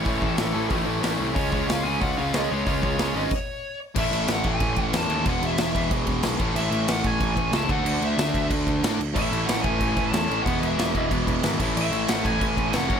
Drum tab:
CC |--------|--------|----x---|xxxxxxxx|
HH |o-o-o-o-|o-o-o-o-|o-o-----|--------|
SD |--o---o-|--o---o-|--o-----|--o---o-|
BD |oo--o---|oo--o---|oo--o---|o--ooo--|

CC |xxxxxxxx|xxxxxxxx|xxxxxxxx|xxxxxxxx|
HH |--------|--------|--------|--------|
SD |--o---o-|--o---o-|--o---o-|--o---o-|
BD |o--ooo-o|---ooo-o|---ooo--|o--ooo--|

CC |xxxxxxxx|xxxxxxxx|
HH |--------|--------|
SD |--o---o-|--o---o-|
BD |o--ooo-o|---ooo-o|